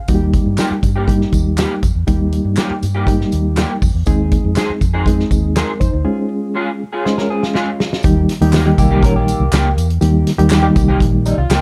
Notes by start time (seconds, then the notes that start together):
0.08 D#2 G3 A#3 D#4 F#4, kick, closed hi-hat, tambourine
0.15 G4
0.33 kick, closed hi-hat, tambourine
0.46 G2
0.58 G3 A#3 D#4 G4, snare, clap, closed hi-hat, tambourine
0.71 muted fingered electric bass stroke
0.83 G2, kick, closed hi-hat, tambourine
0.96 G3 A#3 D#4 G4
1.08 G3 A#3 D#4 G4, kick, closed hi-hat, tambourine
1.21 snare
1.32 D#2, kick, closed hi-hat, tambourine
1.58 G3 A#3 D#4 G4, snare, clap, closed hi-hat, tambourine
1.83 F2, kick, closed hi-hat, tambourine
1.95 E2
2.07 D#2 G3 A#3 D#4 G4, kick, closed hi-hat, tambourine
2.32 closed hi-hat, tambourine
2.45 G2
2.57 G3 A#3 D#4 G4, snare, clap, closed hi-hat, tambourine
2.70 muted fingered electric bass stroke
2.83 G2, closed hi-hat, tambourine
2.95 G3 A#3 D#4 G4
3.07 G3 A#3 D#4 G4, kick, closed hi-hat, tambourine
3.21 snare
3.32 D#2, closed hi-hat, tambourine
3.56 G3 A#3 D#4 G4, snare, clap, closed hi-hat, tambourine
3.82 F2, kick, open hi-hat, tambourine
3.94 E2
4.06 D#2 G#3 C4 D#4 G#4, kick, closed hi-hat, tambourine
4.31 kick, closed hi-hat, tambourine
4.44 F2
4.56 G#3 C4 D#4 G#4, snare, clap, closed hi-hat, tambourine
4.70 muted fingered electric bass stroke
4.81 F2, kick, closed hi-hat, tambourine
4.94 G#3 C4 D#4 G#4
5.06 G#3 B3 D#4 G#4, kick, closed hi-hat, tambourine
5.13 C4
5.20 snare
5.31 D#2, kick, closed hi-hat, tambourine
5.56 G#3 C4 D#4 G#4 A#4, snare, clap, closed hi-hat, tambourine
5.80 F2 D#4 C5, kick, closed hi-hat, tambourine
5.93 D2
6.05 G#3 C#4 F4 G#4
6.55 G#3 C#4 F4 G#4
6.93 G#3 C#4 F4 G#4
7.05 G#3 C#4 D#4 F4 G#4 C5, snare
7.18 C#4 A#4, snare
7.30 C4 G#4
7.43 G#3 F4, snare
7.54 G#3 C#4 F4 G#4, snare
7.80 snare
7.93 snare
8.03 D#2 D#3 G3 A#3 D#4 G4, kick, closed hi-hat, tambourine
8.29 snare, closed hi-hat, tambourine
8.41 D#2 D#3 G3 A#3 D#4 G4, closed hi-hat
8.53 G3 A#3 D#4 G4, snare, clap, closed hi-hat, tambourine
8.66 D#3 G3 A#3 D#4 G4
8.78 C2 A#3 G4, kick, closed hi-hat, tambourine
8.91 G3 A#3 D#4 G4
9.02 A#1 C#4 A#4, kick, closed hi-hat, tambourine
9.16 A#3 G4
9.28 closed hi-hat, tambourine
9.39 C2
9.52 C#2 G3 A#3 D#4 G4, snare, clap, closed hi-hat, tambourine
9.77 E2, closed hi-hat, tambourine
9.90 closed hi-hat
10.01 D#2 D#3 G3 A#3 D#4 G4, closed hi-hat, tambourine
10.27 snare, closed hi-hat, tambourine
10.38 D#2 D#3 G3 A#3 D#4 G4, closed hi-hat
10.50 G3 A#3 D#4 G4, snare, clap, closed hi-hat, tambourine
10.63 D#3 G3 A#3 D#4 G4
10.76 C2, kick, closed hi-hat, tambourine
10.88 G3 A#3 D#4 G4
11.00 A#1, kick, closed hi-hat, tambourine
11.25 G3 D#4, closed hi-hat, tambourine
11.37 C2 F4
11.50 C#2 G3 A#3 D#4 G4, snare, clap, closed hi-hat, tambourine